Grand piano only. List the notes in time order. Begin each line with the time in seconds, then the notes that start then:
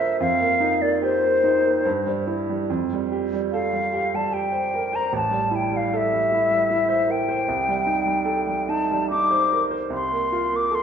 Already playing: G2 A#3 F4 A4 A#4
0.00 C5
0.20 F2
0.40 A#3
0.60 D#4
0.81 A#3
1.02 G4
1.23 A#3
1.44 D#4
1.64 A#3
1.85 G2
2.06 G3
2.27 E4
2.49 G3
2.70 F2
2.93 G3
3.12 G4
3.33 G3
3.54 A4
3.73 G3
3.94 G4
4.14 G3
4.32 G4
4.52 C5
4.74 A#4
4.93 C5
5.13 A1
5.31 G3
5.51 E4
5.72 G3
5.93 A4
6.13 G3
6.32 E4
6.51 G3
6.71 E4
6.89 C5
7.07 A#4
7.29 C5
7.48 C2
7.68 G3
7.87 D#4
8.06 G3
8.25 A4
8.47 G3
8.69 D#4
8.91 G3
9.11 D#4
9.31 C5
9.52 A#4
9.71 C5
9.90 C2
10.12 A#3
10.32 F4
10.53 A#3
10.71 A4